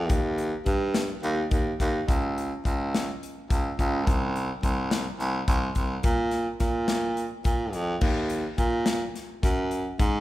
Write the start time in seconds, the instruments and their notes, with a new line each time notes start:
Already playing: baritone saxophone F2
0.09 baritone saxophone D#2, kick, closed hi-hat
0.38 closed hi-hat
0.66 baritone saxophone G2, kick, closed hi-hat
0.94 snare, closed hi-hat
1.23 baritone saxophone D#2, closed hi-hat
1.51 baritone saxophone D#2, kick, closed hi-hat
1.80 baritone saxophone D#2, kick, snare, closed hi-hat
2.08 baritone saxophone C#2, kick, closed hi-hat
2.38 closed hi-hat
2.65 baritone saxophone C#2, kick, closed hi-hat
2.95 snare, closed hi-hat
3.23 closed hi-hat
3.50 baritone saxophone C#2, kick, closed hi-hat
3.79 baritone saxophone C#2, kick, closed hi-hat
4.07 baritone saxophone C2, kick, closed hi-hat
4.36 closed hi-hat
4.63 baritone saxophone C2, kick, closed hi-hat
4.91 snare, closed hi-hat
5.20 baritone saxophone C2, snare, closed hi-hat
5.48 baritone saxophone C2, kick, closed hi-hat
5.75 baritone saxophone C2, kick, closed hi-hat
6.03 baritone saxophone A#2, kick, closed hi-hat
6.31 snare, closed hi-hat
6.60 baritone saxophone A#2, kick, snare, closed hi-hat
6.88 snare, closed hi-hat
7.17 closed hi-hat
7.44 baritone saxophone A#2, kick, closed hi-hat
7.73 baritone saxophone F2, closed hi-hat
8.01 baritone saxophone D#2, kick, crash
8.30 closed hi-hat
8.58 baritone saxophone A#2, kick, closed hi-hat
8.86 snare, closed hi-hat
9.15 snare, closed hi-hat
9.43 baritone saxophone F#2, kick, snare, closed hi-hat
9.71 closed hi-hat
9.99 baritone saxophone G#2, kick, closed hi-hat